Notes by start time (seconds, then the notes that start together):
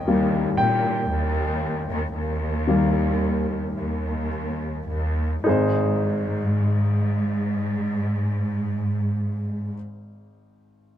Already playing: C#5 D#5 G5
0.08 D#2 D#3 G3 A#3
0.57 A#2 G5
1.11 D#2
1.89 D#2
2.15 D#2
2.67 D#3 G3 A#3
3.77 D#2
4.88 D#2
5.44 G#1 G#2 D#4 G#4
5.49 C5